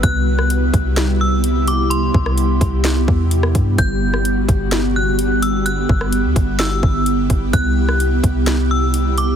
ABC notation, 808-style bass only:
X:1
M:4/4
L:1/16
Q:1/4=128
K:Clyd
V:1 name="808-style bass" clef=bass
C,,6 C,,8- C,,2- | C,,2 C,,4 C,,4 E,,4 G,,2 | G,,,6 G,,,8- G,,,2- | G,,,2 G,,,3 D,, G,,,4 G,,,4 G,,,2 |
C,,6 C,,8- C,,2 |]